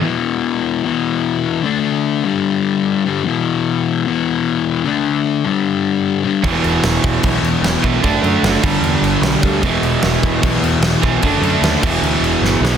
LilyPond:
<<
  \new Staff \with { instrumentName = "Distorted electric guitar" } { \clef bass \time 4/4 \key e \minor \tempo 4 = 150 <e, b, e>2 <e, b, e>2 | <d a d'>4. <g, d g>2 <g, d g>8 | <e, b, e>2 <e, b, e>2 | <d a d'>4. <g, d g>2 <g, d g>8 |
<e, b, e>2 <e, b, e>2 | <d a d'>4. <g, d g>2 <g, d g>8 | <e, b, e>2 <e, b, e>2 | <d a d'>4. <e, b, e>2 <e, b, e>8 | }
  \new Staff \with { instrumentName = "Distorted electric guitar" } { \clef bass \time 4/4 \key e \minor r1 | r1 | r1 | r1 |
<e, b, e>2 <e, b, e>2 | <d a d'>4. <g, d g>2 <g, d g>8 | <e, b, e>2 <e, b, e>2 | <d a d'>4. <e, b, e>2 <e, b, e>8 | }
  \new Staff \with { instrumentName = "Overdriven electric guitar" } { \clef bass \time 4/4 \key e \minor r1 | r1 | r1 | r1 |
<e, b, e>2.~ <e, b, e>8 <e, b, e>8 | <d a d'>4. <g, d g>2~ <g, d g>8 | <e, b, e>2.~ <e, b, e>8 <e, b, e>8 | <d a d'>4. <e, b, e>2~ <e, b, e>8 | }
  \new Staff \with { instrumentName = "Picked electric bass" } { \clef bass \time 4/4 \key e \minor r1 | r1 | r1 | r1 |
e,,8 e,,8 e,,8 e,,8 b,,8 e,8 e,,8 b,,8 | fis,,8 fis,8 fis,,8 g,,8 e,8 g,,8 b,,8 d,8 | e,,8 e,,8 e,,8 e,,8 b,,8 e,8 e,,8 b,,8 | fis,,8 fis,8 dis,8 e,,8 d,8 e,,8 g,,8 b,,8 | }
  \new DrumStaff \with { instrumentName = "Drums" } \drummode { \time 4/4 r4 r4 r4 r4 | r4 r4 r4 r4 | r4 r4 r4 r4 | r4 r4 r4 r4 |
<cymc bd>8 cymc8 <cymc sn>8 <cymc bd>8 <cymc bd>8 cymc8 <cymc sn>8 <cymc bd>8 | <cymc bd>8 cymc8 <cymc sn>8 <cymc bd>8 cymc8 cymc8 <cymc sn>8 <cymc bd>8 | <cymc bd>8 cymc8 <cymc sn>8 <cymc bd>8 <cymc bd>8 cymc8 <cymc sn>8 <cymc bd>8 | <cymc bd>8 cymc8 <cymc sn>8 <cymc bd>8 cymc8 cymc8 sn8 sn8 | }
>>